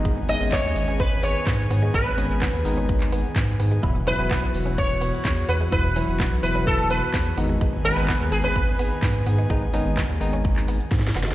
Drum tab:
HH |x-----o-----x-----o-----x-----o-----x-----o-----|x-----o-----x-----o-----x-----o-----x-----o-----|x-----o-----x-----o-----x-----o-----x-----o-----|x-----o-----x-----o-----x-----o-----x-----o-----|
SH |x--x--x--x--x--x--x--x--x--x--x--x--x--x--x--x--|x--x--x--x--x--x--x--x--x--x--x--x--x--x--x--x--|x--x--x--x--x--x--x--x--x--x--x--x--x--x--x--x--|x--x--x--x--x--x--x--x--x--x--x--x--x--x--x--x--|
CP |------------x-----------------------x-----------|------------x--------------x--------x-----------|------------x-----------------------x-----------|------------x-----------------------x-----------|
SD |------------o-----------------------o-----------|------------o-----------------------o-----------|------------o-----------------------o-----------|------------o-----------------------o-----------|
BD |o-----------o-----------o-----------o-----------|o-----------o-----------o-----------o-----------|o-----------o-----------o-----------o-----------|o-----------o-----------o-----------o-----------|

HH |x-----o-----x-----o-----x-----o-----x-----o-----|x-----o-----x-----o-----x-----o-----x-----o-----|
SH |x--x--x--x--x--x--x--x--x--x--x--x--x--x--x--x--|x--x--x--x--x--x--x--x--x--x--x--x--x--x--x--x--|
CP |------------x-----------------------x-----------|------------x--------------x--------------------|
SD |------------o-----------------------o-----------|------------o-----------------------o-o-o-o-o-o-|
BD |o-----------o-----------o-----------o-----------|o-----------o-----------o-----------o-----------|